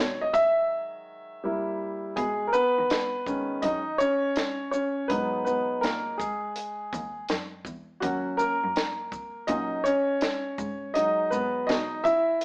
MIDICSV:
0, 0, Header, 1, 4, 480
1, 0, Start_track
1, 0, Key_signature, 5, "major"
1, 0, Tempo, 731707
1, 1423, Time_signature, 4, 2, 24, 8
1, 8165, End_track
2, 0, Start_track
2, 0, Title_t, "Grand piano"
2, 0, Program_c, 0, 0
2, 0, Note_on_c, 0, 51, 66
2, 0, Note_on_c, 0, 54, 62
2, 0, Note_on_c, 0, 56, 51
2, 0, Note_on_c, 0, 73, 98
2, 141, Note_on_c, 0, 75, 95
2, 151, Note_off_c, 0, 73, 0
2, 220, Note_on_c, 0, 76, 119
2, 227, Note_off_c, 0, 75, 0
2, 915, Note_off_c, 0, 54, 0
2, 919, Note_off_c, 0, 51, 0
2, 919, Note_off_c, 0, 56, 0
2, 942, Note_on_c, 0, 55, 65
2, 947, Note_on_c, 0, 58, 54
2, 951, Note_on_c, 0, 64, 69
2, 1395, Note_off_c, 0, 76, 0
2, 1398, Note_off_c, 0, 55, 0
2, 1401, Note_off_c, 0, 58, 0
2, 1403, Note_off_c, 0, 64, 0
2, 1417, Note_on_c, 0, 68, 85
2, 1426, Note_on_c, 0, 56, 67
2, 1618, Note_off_c, 0, 56, 0
2, 1623, Note_on_c, 0, 70, 74
2, 1634, Note_off_c, 0, 68, 0
2, 1657, Note_on_c, 0, 71, 107
2, 1659, Note_off_c, 0, 70, 0
2, 1669, Note_on_c, 0, 59, 70
2, 2141, Note_on_c, 0, 51, 57
2, 2144, Note_on_c, 0, 56, 47
2, 2149, Note_on_c, 0, 61, 62
2, 2360, Note_off_c, 0, 59, 0
2, 2376, Note_on_c, 0, 75, 103
2, 2390, Note_on_c, 0, 63, 76
2, 2402, Note_off_c, 0, 71, 0
2, 2488, Note_off_c, 0, 51, 0
2, 2489, Note_off_c, 0, 56, 0
2, 2492, Note_off_c, 0, 61, 0
2, 2602, Note_off_c, 0, 75, 0
2, 2610, Note_off_c, 0, 63, 0
2, 2613, Note_on_c, 0, 73, 112
2, 2628, Note_on_c, 0, 61, 83
2, 3079, Note_off_c, 0, 61, 0
2, 3083, Note_off_c, 0, 73, 0
2, 3092, Note_on_c, 0, 73, 95
2, 3106, Note_on_c, 0, 61, 72
2, 3328, Note_off_c, 0, 61, 0
2, 3332, Note_on_c, 0, 71, 89
2, 3339, Note_on_c, 0, 54, 58
2, 3343, Note_on_c, 0, 56, 47
2, 3345, Note_off_c, 0, 73, 0
2, 3348, Note_on_c, 0, 63, 58
2, 3349, Note_on_c, 0, 59, 71
2, 3560, Note_off_c, 0, 71, 0
2, 3569, Note_off_c, 0, 59, 0
2, 3572, Note_on_c, 0, 71, 80
2, 3587, Note_on_c, 0, 59, 65
2, 3809, Note_off_c, 0, 59, 0
2, 3812, Note_on_c, 0, 70, 91
2, 3825, Note_off_c, 0, 71, 0
2, 3826, Note_on_c, 0, 58, 66
2, 4035, Note_off_c, 0, 54, 0
2, 4037, Note_off_c, 0, 56, 0
2, 4039, Note_off_c, 0, 63, 0
2, 4048, Note_off_c, 0, 58, 0
2, 4052, Note_on_c, 0, 68, 81
2, 4065, Note_off_c, 0, 70, 0
2, 4068, Note_on_c, 0, 56, 58
2, 4751, Note_off_c, 0, 68, 0
2, 4759, Note_off_c, 0, 56, 0
2, 5250, Note_on_c, 0, 66, 80
2, 5258, Note_on_c, 0, 54, 63
2, 5262, Note_on_c, 0, 58, 49
2, 5266, Note_on_c, 0, 61, 61
2, 5489, Note_off_c, 0, 54, 0
2, 5492, Note_on_c, 0, 70, 104
2, 5497, Note_off_c, 0, 58, 0
2, 5504, Note_off_c, 0, 66, 0
2, 5507, Note_on_c, 0, 58, 67
2, 5611, Note_off_c, 0, 61, 0
2, 6199, Note_off_c, 0, 58, 0
2, 6214, Note_on_c, 0, 75, 93
2, 6221, Note_on_c, 0, 54, 47
2, 6223, Note_on_c, 0, 58, 43
2, 6224, Note_on_c, 0, 61, 51
2, 6227, Note_on_c, 0, 63, 68
2, 6239, Note_off_c, 0, 70, 0
2, 6438, Note_off_c, 0, 54, 0
2, 6439, Note_off_c, 0, 58, 0
2, 6440, Note_off_c, 0, 61, 0
2, 6448, Note_off_c, 0, 63, 0
2, 6454, Note_on_c, 0, 73, 99
2, 6466, Note_off_c, 0, 75, 0
2, 6469, Note_on_c, 0, 61, 82
2, 7160, Note_off_c, 0, 61, 0
2, 7176, Note_on_c, 0, 75, 100
2, 7180, Note_on_c, 0, 54, 55
2, 7183, Note_on_c, 0, 56, 50
2, 7189, Note_on_c, 0, 63, 74
2, 7200, Note_off_c, 0, 73, 0
2, 7410, Note_off_c, 0, 63, 0
2, 7416, Note_on_c, 0, 71, 87
2, 7427, Note_off_c, 0, 75, 0
2, 7429, Note_on_c, 0, 59, 69
2, 7649, Note_off_c, 0, 59, 0
2, 7654, Note_on_c, 0, 75, 98
2, 7666, Note_on_c, 0, 63, 74
2, 7667, Note_off_c, 0, 71, 0
2, 7875, Note_off_c, 0, 54, 0
2, 7877, Note_off_c, 0, 56, 0
2, 7888, Note_off_c, 0, 63, 0
2, 7896, Note_on_c, 0, 76, 115
2, 7906, Note_off_c, 0, 75, 0
2, 7908, Note_on_c, 0, 64, 79
2, 8165, Note_off_c, 0, 64, 0
2, 8165, Note_off_c, 0, 76, 0
2, 8165, End_track
3, 0, Start_track
3, 0, Title_t, "Cello"
3, 0, Program_c, 1, 42
3, 0, Note_on_c, 1, 47, 97
3, 168, Note_off_c, 1, 47, 0
3, 1424, Note_on_c, 1, 47, 90
3, 1819, Note_off_c, 1, 47, 0
3, 1823, Note_on_c, 1, 51, 79
3, 2359, Note_off_c, 1, 51, 0
3, 2384, Note_on_c, 1, 42, 89
3, 2566, Note_off_c, 1, 42, 0
3, 3348, Note_on_c, 1, 44, 94
3, 3528, Note_off_c, 1, 44, 0
3, 3590, Note_on_c, 1, 44, 81
3, 3705, Note_off_c, 1, 44, 0
3, 3829, Note_on_c, 1, 46, 96
3, 4009, Note_off_c, 1, 46, 0
3, 4546, Note_on_c, 1, 39, 93
3, 4727, Note_off_c, 1, 39, 0
3, 4787, Note_on_c, 1, 42, 92
3, 4968, Note_off_c, 1, 42, 0
3, 5017, Note_on_c, 1, 40, 82
3, 5201, Note_off_c, 1, 40, 0
3, 5265, Note_on_c, 1, 39, 94
3, 5564, Note_off_c, 1, 39, 0
3, 5663, Note_on_c, 1, 42, 89
3, 6199, Note_off_c, 1, 42, 0
3, 6224, Note_on_c, 1, 46, 100
3, 6406, Note_off_c, 1, 46, 0
3, 6944, Note_on_c, 1, 44, 89
3, 7308, Note_off_c, 1, 44, 0
3, 7425, Note_on_c, 1, 44, 87
3, 7542, Note_off_c, 1, 44, 0
3, 7667, Note_on_c, 1, 47, 98
3, 7848, Note_off_c, 1, 47, 0
3, 8165, End_track
4, 0, Start_track
4, 0, Title_t, "Drums"
4, 222, Note_on_c, 9, 36, 100
4, 228, Note_on_c, 9, 42, 53
4, 228, Note_on_c, 9, 82, 52
4, 288, Note_off_c, 9, 36, 0
4, 293, Note_off_c, 9, 42, 0
4, 293, Note_off_c, 9, 82, 0
4, 1422, Note_on_c, 9, 36, 108
4, 1423, Note_on_c, 9, 42, 81
4, 1488, Note_off_c, 9, 36, 0
4, 1488, Note_off_c, 9, 42, 0
4, 1664, Note_on_c, 9, 82, 52
4, 1729, Note_off_c, 9, 82, 0
4, 1904, Note_on_c, 9, 42, 77
4, 1910, Note_on_c, 9, 38, 112
4, 1969, Note_off_c, 9, 42, 0
4, 1976, Note_off_c, 9, 38, 0
4, 2142, Note_on_c, 9, 36, 97
4, 2147, Note_on_c, 9, 82, 55
4, 2208, Note_off_c, 9, 36, 0
4, 2213, Note_off_c, 9, 82, 0
4, 2379, Note_on_c, 9, 42, 85
4, 2382, Note_on_c, 9, 36, 79
4, 2444, Note_off_c, 9, 42, 0
4, 2448, Note_off_c, 9, 36, 0
4, 2626, Note_on_c, 9, 82, 52
4, 2692, Note_off_c, 9, 82, 0
4, 2859, Note_on_c, 9, 42, 78
4, 2867, Note_on_c, 9, 38, 106
4, 2924, Note_off_c, 9, 42, 0
4, 2933, Note_off_c, 9, 38, 0
4, 3105, Note_on_c, 9, 82, 51
4, 3170, Note_off_c, 9, 82, 0
4, 3344, Note_on_c, 9, 42, 81
4, 3345, Note_on_c, 9, 36, 103
4, 3409, Note_off_c, 9, 42, 0
4, 3410, Note_off_c, 9, 36, 0
4, 3587, Note_on_c, 9, 82, 50
4, 3653, Note_off_c, 9, 82, 0
4, 3827, Note_on_c, 9, 42, 69
4, 3834, Note_on_c, 9, 38, 109
4, 3893, Note_off_c, 9, 42, 0
4, 3899, Note_off_c, 9, 38, 0
4, 4065, Note_on_c, 9, 36, 100
4, 4069, Note_on_c, 9, 42, 52
4, 4069, Note_on_c, 9, 82, 55
4, 4130, Note_off_c, 9, 36, 0
4, 4135, Note_off_c, 9, 42, 0
4, 4135, Note_off_c, 9, 82, 0
4, 4302, Note_on_c, 9, 42, 88
4, 4367, Note_off_c, 9, 42, 0
4, 4544, Note_on_c, 9, 36, 93
4, 4551, Note_on_c, 9, 42, 47
4, 4551, Note_on_c, 9, 82, 51
4, 4610, Note_off_c, 9, 36, 0
4, 4617, Note_off_c, 9, 42, 0
4, 4617, Note_off_c, 9, 82, 0
4, 4779, Note_on_c, 9, 42, 78
4, 4787, Note_on_c, 9, 38, 101
4, 4845, Note_off_c, 9, 42, 0
4, 4853, Note_off_c, 9, 38, 0
4, 5017, Note_on_c, 9, 36, 89
4, 5025, Note_on_c, 9, 82, 49
4, 5082, Note_off_c, 9, 36, 0
4, 5090, Note_off_c, 9, 82, 0
4, 5263, Note_on_c, 9, 36, 104
4, 5264, Note_on_c, 9, 42, 80
4, 5329, Note_off_c, 9, 36, 0
4, 5330, Note_off_c, 9, 42, 0
4, 5505, Note_on_c, 9, 82, 54
4, 5571, Note_off_c, 9, 82, 0
4, 5746, Note_on_c, 9, 42, 74
4, 5753, Note_on_c, 9, 38, 117
4, 5812, Note_off_c, 9, 42, 0
4, 5819, Note_off_c, 9, 38, 0
4, 5982, Note_on_c, 9, 36, 99
4, 5988, Note_on_c, 9, 82, 53
4, 6048, Note_off_c, 9, 36, 0
4, 6053, Note_off_c, 9, 82, 0
4, 6217, Note_on_c, 9, 42, 83
4, 6221, Note_on_c, 9, 36, 84
4, 6283, Note_off_c, 9, 42, 0
4, 6287, Note_off_c, 9, 36, 0
4, 6466, Note_on_c, 9, 42, 49
4, 6466, Note_on_c, 9, 82, 53
4, 6532, Note_off_c, 9, 42, 0
4, 6532, Note_off_c, 9, 82, 0
4, 6698, Note_on_c, 9, 42, 76
4, 6706, Note_on_c, 9, 38, 101
4, 6763, Note_off_c, 9, 42, 0
4, 6771, Note_off_c, 9, 38, 0
4, 6942, Note_on_c, 9, 36, 102
4, 6945, Note_on_c, 9, 82, 51
4, 7008, Note_off_c, 9, 36, 0
4, 7011, Note_off_c, 9, 82, 0
4, 7185, Note_on_c, 9, 42, 77
4, 7251, Note_off_c, 9, 42, 0
4, 7428, Note_on_c, 9, 82, 52
4, 7493, Note_off_c, 9, 82, 0
4, 7669, Note_on_c, 9, 42, 71
4, 7676, Note_on_c, 9, 38, 114
4, 7735, Note_off_c, 9, 42, 0
4, 7742, Note_off_c, 9, 38, 0
4, 7904, Note_on_c, 9, 36, 94
4, 7911, Note_on_c, 9, 42, 49
4, 7911, Note_on_c, 9, 82, 53
4, 7970, Note_off_c, 9, 36, 0
4, 7976, Note_off_c, 9, 42, 0
4, 7976, Note_off_c, 9, 82, 0
4, 8142, Note_on_c, 9, 42, 85
4, 8165, Note_off_c, 9, 42, 0
4, 8165, End_track
0, 0, End_of_file